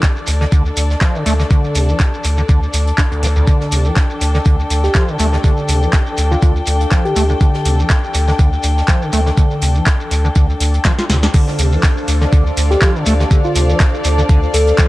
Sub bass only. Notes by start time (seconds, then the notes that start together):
0.28 D2
0.52 D2
0.77 D2
1.26 D2
1.75 D2
2.24 D2
2.49 D2
2.74 D2
3.23 D2
3.72 D2
4.21 D2
4.46 D2
4.70 D2
5.19 D2
5.69 D2
6.18 D2
6.42 D2
6.67 D2
7.16 D2
7.65 D2
8.15 D2
8.39 D2
8.64 D2
9.13 D2
9.62 D2
10.11 D2
10.36 D2
10.60 D2
11.10 D2
11.59 D2
12.08 D2
12.33 D2
12.57 D2
13.06 D2
13.55 D2
14.05 D2
14.29 D2
14.54 D2